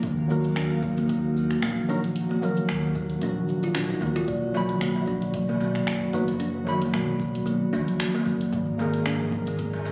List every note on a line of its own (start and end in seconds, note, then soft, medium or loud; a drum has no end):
0.00 0.50 D#2 loud
0.00 4.24 A#3 medium
0.00 kick loud
0.00 closed hi-hat medium
0.00 mid tom medium
0.00 cabasa soft
0.04 4.25 D#3 medium
0.04 8.50 F#4 medium
0.04 2.14 F5 medium
0.28 1.86 D#3 medium
0.28 1.85 F#3 medium
0.28 1.86 A#3 medium
0.28 0.44 A#3 medium
0.28 1.87 F#4 medium
0.28 1.87 A#4 medium
0.28 cabasa medium
0.44 closed hi-hat soft
0.44 cabasa soft
0.56 1.56 D#2 medium
0.56 0.71 D4 medium
0.56 finger snap loud
0.56 closed hi-hat medium
0.56 cabasa soft
0.83 kick loud
0.83 mid tom medium
0.83 cabasa medium
0.97 1.05 A#3 medium
0.97 closed hi-hat soft
0.97 cabasa soft
1.09 1.24 A#3 medium
1.09 kick medium
1.09 closed hi-hat medium
1.09 cabasa soft
1.37 cabasa medium
1.51 finger snap soft
1.51 closed hi-hat soft
1.51 cabasa soft
1.62 1.81 A#1 medium
1.62 1.77 A#3 medium
1.62 finger snap loud
1.62 closed hi-hat medium
1.62 mid tom medium
1.62 cabasa soft
1.88 2.70 A#1 medium
1.88 1.99 F#3 medium
1.88 1.99 A#3 medium
1.88 2.03 D4 medium
1.88 2.00 D#4 medium
1.88 2.00 F#4 medium
1.88 2.00 A#4 medium
1.88 cabasa medium
2.04 closed hi-hat soft
2.04 cabasa soft
2.16 closed hi-hat medium
2.16 cabasa soft
2.31 2.37 A#3 medium
2.41 4.27 D#3 medium
2.41 4.26 F#3 medium
2.41 4.26 A#3 medium
2.41 2.57 A#3 medium
2.41 4.28 A#4 medium
2.41 mid tom medium
2.41 cabasa medium
2.57 closed hi-hat soft
2.57 cabasa soft
2.69 3.16 D#2 medium
2.69 finger snap loud
2.69 closed hi-hat soft
2.69 cabasa soft
2.95 3.10 A#3 medium
2.95 kick loud
2.95 cabasa medium
3.10 closed hi-hat soft
3.10 cabasa soft
3.22 3.69 A#1 medium
3.22 3.36 D4 medium
3.22 closed hi-hat medium
3.22 mid tom medium
3.22 cabasa soft
3.49 cabasa medium
3.63 3.75 F4 medium
3.63 closed hi-hat soft
3.63 cabasa soft
3.75 3.94 A#1 medium
3.75 3.88 D4 medium
3.75 finger snap loud
3.75 closed hi-hat medium
3.75 cabasa soft
3.90 4.01 D#4 medium
4.01 4.20 D#2 medium
4.01 4.15 A#3 medium
4.01 mid tom medium
4.01 cabasa medium
4.16 4.27 F4 loud
4.16 closed hi-hat soft
4.16 cabasa soft
4.28 4.75 B1 loud
4.28 4.42 A#3 medium
4.28 9.92 D5 medium
4.28 kick loud
4.28 closed hi-hat medium
4.28 cabasa soft
4.53 6.11 D#3 medium
4.53 6.10 F#3 medium
4.53 6.12 F#4 medium
4.53 mid tom medium
4.53 darbuka tek medium
4.53 cabasa medium
4.57 6.12 B5 medium
4.69 closed hi-hat soft
4.69 darbuka ka medium
4.69 cabasa soft
4.81 5.81 B1 medium
4.81 4.95 A#3 medium
4.81 finger snap loud
4.81 closed hi-hat medium
4.81 cabasa soft
4.96 darbuka ka soft
4.96 darbuka dum medium
5.07 5.22 D4 medium
5.07 kick loud
5.07 cabasa medium
5.22 closed hi-hat soft
5.22 cabasa soft
5.34 kick medium
5.34 closed hi-hat medium
5.34 mid tom medium
5.34 cabasa soft
5.49 5.56 A#3 medium
5.49 darbuka tek medium
5.60 5.75 A#3 medium
5.60 darbuka tek medium
5.60 cabasa medium
5.75 finger snap soft
5.75 closed hi-hat soft
5.75 cabasa soft
5.87 6.06 F#1 medium
5.87 finger snap loud
5.87 closed hi-hat medium
5.87 cabasa soft
6.13 6.95 F#1 medium
6.13 6.24 F#3 medium
6.13 6.28 A#3 medium
6.13 6.24 B3 medium
6.13 6.24 D#4 medium
6.13 6.24 F#4 medium
6.13 6.25 B4 medium
6.13 mid tom medium
6.13 cabasa medium
6.28 closed hi-hat soft
6.28 darbuka dum medium
6.28 cabasa soft
6.40 6.54 D4 medium
6.40 closed hi-hat medium
6.40 cabasa soft
6.65 8.51 D#3 medium
6.65 8.50 F#3 medium
6.65 8.52 F#4 medium
6.65 darbuka tek medium
6.65 darbuka dum medium
6.65 cabasa medium
6.69 8.52 B5 medium
6.81 6.89 A#3 medium
6.81 closed hi-hat soft
6.81 darbuka ka medium
6.81 cabasa soft
6.93 7.40 B1 medium
6.93 7.08 A#3 medium
6.93 finger snap medium
6.93 closed hi-hat medium
6.93 mid tom medium
6.93 cabasa soft
7.08 darbuka ka soft
7.20 kick loud
7.20 cabasa medium
7.35 closed hi-hat soft
7.35 cabasa soft
7.46 7.65 B1 medium
7.46 7.60 A#3 medium
7.46 closed hi-hat medium
7.46 cabasa soft
7.73 7.83 D#2 medium
7.73 7.87 D4 medium
7.73 mid tom medium
7.73 darbuka tek medium
7.73 cabasa medium
7.88 closed hi-hat soft
7.88 darbuka dum medium
7.88 cabasa soft
8.00 finger snap loud
8.00 closed hi-hat medium
8.00 cabasa soft
8.15 8.21 A#3 medium
8.15 darbuka tek medium
8.26 8.45 F#1 medium
8.26 8.40 A#3 medium
8.26 cabasa medium
8.41 closed hi-hat soft
8.41 darbuka ka soft
8.41 cabasa soft
8.53 9.00 G#1 loud
8.53 9.92 D#3 medium
8.53 9.92 G#3 medium
8.53 9.92 A#4 medium
8.53 kick loud
8.53 closed hi-hat medium
8.53 mid tom medium
8.53 cabasa soft
8.78 9.92 D#3 medium
8.78 9.92 A#3 medium
8.78 8.94 A#3 medium
8.78 9.92 G#4 medium
8.78 9.92 A#4 medium
8.78 darbuka tek medium
8.78 cabasa medium
8.94 closed hi-hat soft
8.94 darbuka ka medium
8.94 cabasa soft
9.06 9.92 G#1 medium
9.06 9.20 D4 medium
9.06 finger snap loud
9.06 closed hi-hat medium
9.06 cabasa soft
9.21 darbuka ka soft
9.21 darbuka dum medium
9.32 kick medium
9.32 mid tom medium
9.32 cabasa medium
9.47 9.54 A#3 medium
9.47 closed hi-hat soft
9.47 cabasa soft
9.59 9.73 A#3 medium
9.59 kick medium
9.59 closed hi-hat medium
9.59 cabasa soft
9.73 darbuka tek medium
9.85 darbuka tek medium
9.85 cabasa medium